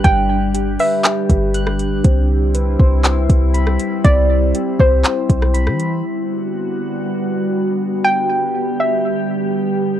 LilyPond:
<<
  \new Staff \with { instrumentName = "Synth pluck" } { \time 4/4 \key g \major \tempo 4 = 120 g''4. e''4. r4 | r1 | d''4. c''4. r4 | r1 |
g''4. e''4. r4 | }
  \new Staff \with { instrumentName = "Synth keys" } { \time 4/4 \key g \major <g b' fis'''>4 g'8 b'4. fis'''4 | c'4 b'8 c''4. b''4 | c'4 g'8 c''4. b''4 | r1 |
r1 | }
  \new Staff \with { instrumentName = "Ambient pad" } { \time 4/4 \key g \major << { g'1 | e'1~ | e'1 | fis'1 |
g'1 | } \\ { <d g d'>1 | <g c'>1~ | <g c'>1 | <d g b>1~ |
<d g b>1 | } >> }
  \new Staff \with { instrumentName = "808-style bass" } { \clef bass \time 4/4 \key g \major g,,4. r4 g,,4. | c,4. c,4 c,4 r8 | c,4 r8 c,8 r8 b,,8. e8. | r1 |
r1 | }
  \new DrumStaff \with { instrumentName = "Drums" } \drummode { \time 4/4 <hh bd>4 hh8 hho8 <hc hh>8 <hh bd>8 hh16 ss16 hh8 | <hh bd>4 hh8 bd8 <hc hh>8 <hh bd>8 hh16 ss16 hh8 | <hh bd>4 hh8 bd8 <hc hh>8 <hh bd>16 ss16 hh16 ss16 hh8 | r4 r4 r4 r4 |
r4 r4 r4 r4 | }
>>